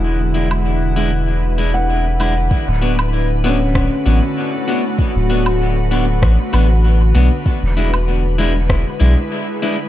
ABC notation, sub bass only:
X:1
M:4/4
L:1/16
Q:"Swing 16ths" 1/4=97
K:Dlyd
V:1 name="Sub bass" clef=bass
E,,,16 | z D,,,8 z A,,, z4 z | z D,,,6- D,,, A,,, z A,,,4 B,,, z | z E,,,8 z B,,, z4 z |]